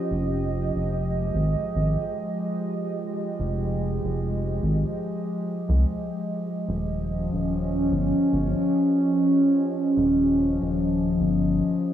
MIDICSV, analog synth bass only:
0, 0, Header, 1, 2, 480
1, 0, Start_track
1, 0, Key_signature, -4, "minor"
1, 0, Tempo, 821918
1, 66, Time_signature, 4, 2, 24, 8
1, 6970, End_track
2, 0, Start_track
2, 0, Title_t, "Analog synth bass"
2, 0, Program_c, 0, 38
2, 66, Note_on_c, 0, 29, 92
2, 418, Note_off_c, 0, 29, 0
2, 443, Note_on_c, 0, 29, 81
2, 766, Note_off_c, 0, 29, 0
2, 786, Note_on_c, 0, 32, 80
2, 908, Note_off_c, 0, 32, 0
2, 1025, Note_on_c, 0, 32, 82
2, 1147, Note_off_c, 0, 32, 0
2, 1984, Note_on_c, 0, 29, 90
2, 2337, Note_off_c, 0, 29, 0
2, 2364, Note_on_c, 0, 29, 86
2, 2687, Note_off_c, 0, 29, 0
2, 2705, Note_on_c, 0, 32, 81
2, 2827, Note_off_c, 0, 32, 0
2, 3323, Note_on_c, 0, 36, 83
2, 3413, Note_off_c, 0, 36, 0
2, 3904, Note_on_c, 0, 27, 94
2, 4257, Note_off_c, 0, 27, 0
2, 4282, Note_on_c, 0, 27, 79
2, 4606, Note_off_c, 0, 27, 0
2, 4624, Note_on_c, 0, 31, 79
2, 4747, Note_off_c, 0, 31, 0
2, 4864, Note_on_c, 0, 31, 88
2, 4987, Note_off_c, 0, 31, 0
2, 5825, Note_on_c, 0, 27, 98
2, 6177, Note_off_c, 0, 27, 0
2, 6202, Note_on_c, 0, 27, 86
2, 6525, Note_off_c, 0, 27, 0
2, 6544, Note_on_c, 0, 31, 80
2, 6785, Note_off_c, 0, 31, 0
2, 6970, End_track
0, 0, End_of_file